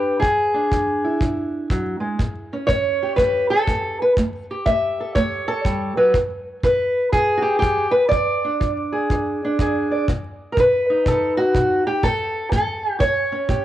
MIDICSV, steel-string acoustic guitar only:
0, 0, Header, 1, 2, 480
1, 0, Start_track
1, 0, Tempo, 490998
1, 218, Time_signature, 4, 2, 24, 8
1, 13343, End_track
2, 0, Start_track
2, 0, Title_t, "Steel-string acoustic guitar"
2, 0, Program_c, 0, 25
2, 0, Note_on_c, 0, 52, 68
2, 0, Note_on_c, 0, 62, 47
2, 0, Note_on_c, 0, 67, 85
2, 0, Note_on_c, 0, 71, 103
2, 184, Note_off_c, 0, 52, 0
2, 187, Note_off_c, 0, 71, 0
2, 191, Note_on_c, 0, 68, 86
2, 197, Note_off_c, 0, 62, 0
2, 209, Note_on_c, 0, 52, 76
2, 215, Note_off_c, 0, 67, 0
2, 529, Note_on_c, 0, 62, 49
2, 661, Note_off_c, 0, 52, 0
2, 696, Note_on_c, 0, 52, 71
2, 1021, Note_on_c, 0, 64, 42
2, 1145, Note_off_c, 0, 52, 0
2, 1167, Note_off_c, 0, 68, 0
2, 1191, Note_on_c, 0, 52, 73
2, 1633, Note_off_c, 0, 52, 0
2, 1666, Note_on_c, 0, 54, 61
2, 1953, Note_off_c, 0, 54, 0
2, 1957, Note_on_c, 0, 56, 61
2, 2122, Note_off_c, 0, 62, 0
2, 2135, Note_off_c, 0, 56, 0
2, 2140, Note_on_c, 0, 45, 73
2, 2473, Note_on_c, 0, 61, 48
2, 2589, Note_off_c, 0, 45, 0
2, 2608, Note_on_c, 0, 73, 110
2, 2620, Note_on_c, 0, 45, 76
2, 2954, Note_off_c, 0, 64, 0
2, 2958, Note_on_c, 0, 67, 47
2, 3070, Note_off_c, 0, 45, 0
2, 3087, Note_off_c, 0, 73, 0
2, 3091, Note_on_c, 0, 71, 93
2, 3111, Note_on_c, 0, 45, 76
2, 3411, Note_off_c, 0, 71, 0
2, 3424, Note_on_c, 0, 69, 94
2, 3557, Note_off_c, 0, 45, 0
2, 3595, Note_on_c, 0, 45, 74
2, 3903, Note_off_c, 0, 69, 0
2, 3929, Note_on_c, 0, 71, 80
2, 4023, Note_off_c, 0, 71, 0
2, 4040, Note_off_c, 0, 45, 0
2, 4059, Note_off_c, 0, 61, 0
2, 4061, Note_off_c, 0, 67, 0
2, 4089, Note_on_c, 0, 57, 74
2, 4407, Note_on_c, 0, 67, 49
2, 4528, Note_off_c, 0, 57, 0
2, 4553, Note_on_c, 0, 76, 104
2, 4566, Note_on_c, 0, 57, 66
2, 4892, Note_on_c, 0, 69, 45
2, 5008, Note_off_c, 0, 57, 0
2, 5030, Note_off_c, 0, 76, 0
2, 5034, Note_on_c, 0, 73, 102
2, 5049, Note_on_c, 0, 57, 80
2, 5344, Note_off_c, 0, 69, 0
2, 5356, Note_on_c, 0, 69, 94
2, 5490, Note_off_c, 0, 57, 0
2, 5520, Note_on_c, 0, 55, 63
2, 5828, Note_off_c, 0, 73, 0
2, 5830, Note_off_c, 0, 55, 0
2, 5833, Note_off_c, 0, 69, 0
2, 5839, Note_on_c, 0, 54, 65
2, 5839, Note_on_c, 0, 71, 69
2, 5990, Note_off_c, 0, 67, 0
2, 5999, Note_on_c, 0, 52, 70
2, 6003, Note_off_c, 0, 71, 0
2, 6004, Note_off_c, 0, 54, 0
2, 6447, Note_off_c, 0, 52, 0
2, 6489, Note_on_c, 0, 52, 74
2, 6490, Note_on_c, 0, 71, 91
2, 6932, Note_off_c, 0, 52, 0
2, 6961, Note_off_c, 0, 71, 0
2, 6965, Note_on_c, 0, 68, 89
2, 6982, Note_on_c, 0, 52, 77
2, 7209, Note_on_c, 0, 66, 69
2, 7252, Note_off_c, 0, 66, 0
2, 7256, Note_on_c, 0, 67, 87
2, 7406, Note_off_c, 0, 67, 0
2, 7418, Note_on_c, 0, 67, 95
2, 7419, Note_off_c, 0, 52, 0
2, 7451, Note_on_c, 0, 52, 72
2, 7678, Note_off_c, 0, 68, 0
2, 7735, Note_on_c, 0, 71, 92
2, 7742, Note_off_c, 0, 67, 0
2, 7894, Note_off_c, 0, 52, 0
2, 7900, Note_off_c, 0, 71, 0
2, 7904, Note_on_c, 0, 74, 102
2, 7939, Note_on_c, 0, 52, 73
2, 8256, Note_on_c, 0, 62, 49
2, 8378, Note_off_c, 0, 52, 0
2, 8410, Note_on_c, 0, 52, 73
2, 8725, Note_on_c, 0, 68, 43
2, 8853, Note_off_c, 0, 52, 0
2, 8911, Note_on_c, 0, 52, 78
2, 9205, Note_off_c, 0, 62, 0
2, 9234, Note_on_c, 0, 62, 47
2, 9343, Note_off_c, 0, 52, 0
2, 9369, Note_off_c, 0, 68, 0
2, 9382, Note_on_c, 0, 52, 74
2, 9392, Note_on_c, 0, 68, 46
2, 9664, Note_off_c, 0, 74, 0
2, 9692, Note_on_c, 0, 74, 47
2, 9818, Note_off_c, 0, 52, 0
2, 9831, Note_off_c, 0, 74, 0
2, 9836, Note_off_c, 0, 68, 0
2, 9842, Note_off_c, 0, 62, 0
2, 9863, Note_on_c, 0, 47, 76
2, 10288, Note_on_c, 0, 70, 68
2, 10297, Note_off_c, 0, 47, 0
2, 10328, Note_off_c, 0, 70, 0
2, 10336, Note_on_c, 0, 47, 69
2, 10360, Note_on_c, 0, 71, 88
2, 10654, Note_on_c, 0, 63, 47
2, 10773, Note_off_c, 0, 47, 0
2, 10811, Note_on_c, 0, 47, 69
2, 10830, Note_on_c, 0, 69, 88
2, 11114, Note_off_c, 0, 69, 0
2, 11118, Note_on_c, 0, 66, 88
2, 11249, Note_off_c, 0, 47, 0
2, 11289, Note_on_c, 0, 47, 74
2, 11296, Note_off_c, 0, 71, 0
2, 11591, Note_off_c, 0, 66, 0
2, 11602, Note_on_c, 0, 67, 84
2, 11726, Note_off_c, 0, 47, 0
2, 11745, Note_off_c, 0, 63, 0
2, 11761, Note_on_c, 0, 45, 70
2, 11762, Note_off_c, 0, 67, 0
2, 11766, Note_on_c, 0, 69, 112
2, 12201, Note_off_c, 0, 45, 0
2, 12228, Note_off_c, 0, 69, 0
2, 12237, Note_on_c, 0, 45, 72
2, 12243, Note_on_c, 0, 69, 92
2, 12677, Note_off_c, 0, 45, 0
2, 12697, Note_on_c, 0, 45, 80
2, 12705, Note_off_c, 0, 69, 0
2, 12709, Note_on_c, 0, 73, 103
2, 13022, Note_on_c, 0, 61, 49
2, 13144, Note_off_c, 0, 45, 0
2, 13183, Note_on_c, 0, 45, 71
2, 13188, Note_on_c, 0, 67, 46
2, 13343, Note_off_c, 0, 45, 0
2, 13343, Note_off_c, 0, 61, 0
2, 13343, Note_off_c, 0, 67, 0
2, 13343, Note_off_c, 0, 73, 0
2, 13343, End_track
0, 0, End_of_file